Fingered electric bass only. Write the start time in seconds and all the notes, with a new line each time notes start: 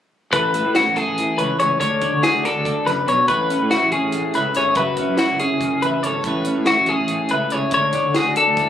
0.33 A1
0.65 A2
0.87 A1
1.07 A1
1.39 C#2
1.60 C#2
1.81 D2
2.13 D3
2.34 D2
2.56 D2
2.87 F#2
3.08 B1
3.29 A1
3.62 A2
3.83 A1
4.03 A1
4.36 C#2
4.56 G#1
4.76 F#1
5.09 F#2
5.30 F#1
5.52 F#1
5.83 A1
6.04 G#1
6.24 A1
6.57 A2
6.79 A1
6.99 A1
7.32 C#2
7.53 C#2
7.72 D2
8.05 D3
8.26 D2
8.47 D2